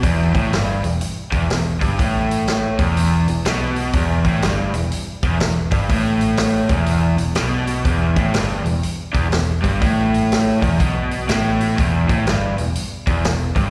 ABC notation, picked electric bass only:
X:1
M:4/4
L:1/8
Q:"Swing" 1/4=122
K:Em
V:1 name="Picked electric bass" clef=bass
E,,, A,,, G,,, E,,, z E,,, E,,, G,,, | A,,,3 E,,,2 E,,, B,,,2 | E,,, A,,, G,,, E,,, z E,,, E,,, G,,, | A,,,3 E,,,2 E,,, B,,,2 |
E,,, A,,, G,,, E,,, z E,,, E,,, G,,, | A,,,3 E,,, B,,,2 A,,,2 | E,,, A,,, G,,, E,,, z E,,, E,,, G,,, |]